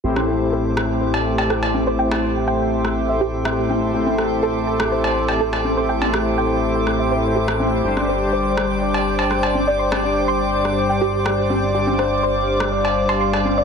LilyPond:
<<
  \new Staff \with { instrumentName = "Synth texture" } { \time 4/4 \key a \minor \tempo 4 = 123 d'''1~ | d'''1~ | d'''1~ | d'''1~ |
d'''1~ | d'''1~ | d'''1 | }
  \new Staff \with { instrumentName = "Analog synth pad" } { \time 4/4 \key a \minor << { <a' e'' c'''>1~ | <a' e'' c'''>1~ | <a' e'' c'''>1~ | <a' e'' c'''>1 |
<c'' d'' d'''>1~ | <c'' d'' d'''>1~ | <c'' d'' d'''>1 | } \\ { g''1~ | g''1~ | g''1~ | g''1 |
g''1~ | g''1 | f''1 | } >> }
  \new Staff \with { instrumentName = "Synth pluck" } { \time 4/4 \key a \minor g'16 r16 a'16 r16 a'16 r16 a''16 r16 c''16 r8 g''16 a'16 r8 c''16 | g''16 r16 g'16 r16 g''16 r4 e''16 g'16 r16 e''16 r16 g'16 r16 | g'16 r16 a'16 r16 a'16 r16 a''16 r16 c''16 r8 g''16 a'16 r8 c''16 | g''16 r16 g'16 r16 g''16 r4 e''16 c''16 r16 g'16 e''16 e''16 r16 |
g'16 r16 c''16 r16 c''16 r16 d'''16 r16 d''16 r8 c'''16 c'''16 r8 d''16 | c'''16 r16 g'16 r16 c'''16 r4 g''16 g'16 r16 g''16 r16 g'16 r16 | g'16 r16 c''16 r16 c''16 r16 d'''16 r16 d''16 r8 c'''16 c'''16 r8 d''16 | }
  \new Staff \with { instrumentName = "Supersaw synth" } { \time 4/4 \key a \minor <a, a c' e' g' c''>1~ | <a, a c' e' g' c''>1 | <a, a c' e' g' c''>1~ | <a, a c' e' g' c''>1 |
<g d' g' c''>1~ | <g d' g' c''>1 | <g d' g' c''>1 | }
  \new Staff \with { instrumentName = "Analog synth bass" } { \clef bass \time 4/4 \key a \minor a,,1~ | a,,1~ | a,,1~ | a,,1 |
g,,1~ | g,,1~ | g,,1 | }
  \new DrumStaff \with { instrumentName = "Drums" } \drummode { \time 4/4 r16 <cgho ss>8. r8 ss8 r16 cb8 cb16 ss16 cb16 cgho8 | r16 <cgho cb ss>8. r8. ss16 r4 ss8 cgho8 | r16 cgho16 ss8 r8. ss16 r16 cb8 cb16 r16 <cb ss>16 cgho8 | r16 <cgho cb>16 ss8 r4 ss4 r16 ss16 cgho8 |
r16 <cgho ss>8. r8 ss8 r16 cb8 cb16 ss16 cb16 cgho8 | r16 <cgho cb ss>8. r8. ss16 r4 ss8 cgho8 | r16 cgho16 ss8 r8. ss16 r16 cb8 cb16 r16 <cb ss>16 cgho8 | }
>>